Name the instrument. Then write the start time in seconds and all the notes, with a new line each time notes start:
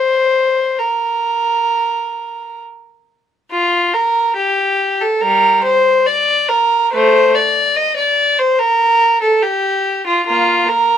violin
Already playing: C5
0.79 A#4
3.51 F4
3.94 A#4
4.36 G4
5.01 A4
5.21 G3 A#4
5.64 C5
6.07 D5
6.48 A#4
6.93 A3 C5
7.34 D5
7.76 D#5
7.97 D5
8.39 C5
8.59 A#4
9.22 A4
9.42 G4
10.07 F4
10.26 A#3 F4
10.69 A#4